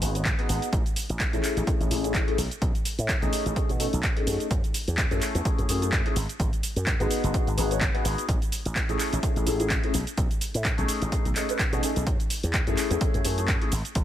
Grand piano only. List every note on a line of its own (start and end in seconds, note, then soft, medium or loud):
0.01 0.13 B3 medium
0.01 0.13 D#4 medium
0.01 0.13 F#4 medium
0.01 0.13 G#4 medium
0.15 0.25 B3 medium
0.15 0.25 D#4 medium
0.15 0.25 F#4 medium
0.15 0.25 C#5 medium
0.38 0.46 B3 medium
0.38 0.47 D#4 medium
0.38 0.47 F#4 medium
0.38 0.47 G#4 loud
0.48 0.67 B3 medium
0.48 0.68 D#4 medium
0.48 0.68 F#4 medium
0.48 0.68 G#4 medium
1.33 1.64 A3 medium
1.33 1.65 C#4 medium
1.33 1.65 E4 medium
1.33 1.65 G#4 medium
1.67 1.86 C#4 medium
1.67 1.86 E4 medium
1.67 1.86 G#4 medium
1.90 2.02 A3 medium
1.90 2.02 C#4 medium
1.90 2.02 E4 medium
1.90 2.02 G#4 medium
2.04 2.24 A3 medium
2.04 2.24 C#4 medium
2.04 2.24 E4 medium
2.04 2.25 G#4 medium
2.27 2.37 A3 medium
2.27 2.37 C#4 medium
2.27 2.37 E4 medium
2.27 2.37 G#4 medium
3.22 3.53 A3 medium
3.22 3.54 C#4 medium
3.22 3.54 D#4 medium
3.22 3.54 G#4 loud
3.56 3.69 A3 medium
3.56 3.69 C#4 medium
3.56 3.69 D#4 medium
3.56 3.69 G#4 loud
3.79 3.92 A3 medium
3.79 3.92 C#4 medium
3.79 3.93 D#4 medium
3.79 3.93 A4 loud
4.16 4.25 A3 medium
4.16 4.25 C#4 medium
4.16 4.25 D#4 medium
4.16 4.26 G#4 medium
4.26 4.45 A3 medium
4.26 4.45 C#4 medium
4.26 4.46 D#4 medium
4.26 4.46 G#4 medium
5.11 5.42 A3 medium
5.11 5.43 C#4 medium
5.11 5.43 E4 medium
5.11 5.43 G#4 medium
5.45 5.64 A3 medium
5.45 5.64 C#4 medium
5.45 5.64 E4 medium
5.45 5.64 G#4 medium
5.68 5.80 A3 medium
5.68 5.80 C#4 medium
5.68 5.80 E4 medium
5.68 5.80 G#4 medium
5.82 6.02 A3 medium
5.82 6.02 C#4 medium
5.82 6.03 E4 medium
5.82 6.03 G#4 medium
6.05 6.15 A3 medium
6.05 6.15 C#4 medium
6.05 6.15 E4 medium
6.05 6.15 G#4 medium
7.00 7.31 B3 loud
7.00 7.32 D#4 medium
7.00 7.32 F#4 medium
7.00 7.32 G#4 loud
7.34 7.47 B3 medium
7.34 7.47 D#4 medium
7.34 7.47 F#4 medium
7.34 7.47 G#4 loud
7.57 7.69 B3 medium
7.57 7.69 D#4 medium
7.57 7.69 F#4 medium
7.57 7.69 G#4 medium
7.71 7.81 B3 medium
7.71 7.81 D#4 medium
7.71 7.81 F#4 medium
7.71 7.81 C#5 medium
7.94 8.02 B3 medium
7.94 8.02 D#4 medium
7.94 8.03 F#4 medium
7.94 8.03 G#4 loud
8.04 8.23 B3 medium
8.04 8.24 D#4 medium
8.04 8.24 F#4 medium
8.04 8.24 G#4 medium
8.89 9.20 A3 medium
8.89 9.20 C#4 medium
8.89 9.21 E4 medium
8.89 9.21 G#4 medium
9.23 9.42 A3 medium
9.23 9.42 C#4 medium
9.23 9.42 E4 medium
9.23 9.42 G#4 medium
9.46 9.58 A3 medium
9.46 9.58 C#4 medium
9.46 9.58 E4 medium
9.46 9.58 G#4 medium
9.59 9.80 A3 medium
9.59 9.80 C#4 medium
9.59 9.80 E4 medium
9.59 9.81 G#4 medium
9.83 9.93 A3 medium
9.83 9.93 C#4 medium
9.83 9.93 E4 medium
9.83 9.93 G#4 medium
10.77 11.09 A3 loud
10.77 11.10 C#4 medium
10.77 11.10 D#4 medium
10.77 11.10 G#4 loud
11.12 11.25 A3 medium
11.12 11.25 C#4 medium
11.12 11.25 D#4 medium
11.12 11.25 G#4 loud
11.36 11.47 A3 medium
11.36 11.47 C#4 medium
11.36 11.47 D#4 medium
11.36 11.47 G#4 medium
11.49 11.59 A3 medium
11.49 11.59 C#4 medium
11.49 11.59 D#4 medium
11.49 11.59 B4 medium
11.72 11.80 A3 medium
11.72 11.81 C#4 medium
11.72 11.81 D#4 medium
11.72 11.81 G#4 loud
11.83 12.02 A3 medium
11.83 12.02 C#4 medium
11.83 12.02 D#4 medium
11.83 12.02 G#4 medium
12.67 12.99 A3 medium
12.67 12.99 C#4 medium
12.67 12.99 E4 medium
12.67 12.99 G#4 medium
13.01 13.20 A3 medium
13.01 13.20 C#4 medium
13.01 13.20 E4 medium
13.01 13.20 G#4 medium
13.24 13.36 A3 medium
13.24 13.36 C#4 medium
13.24 13.36 E4 medium
13.24 13.36 G#4 medium
13.38 13.58 A3 medium
13.38 13.58 C#4 medium
13.38 13.59 E4 medium
13.38 13.59 G#4 medium
13.61 13.71 A3 medium
13.61 13.71 C#4 medium
13.61 13.71 E4 medium
13.61 13.71 G#4 medium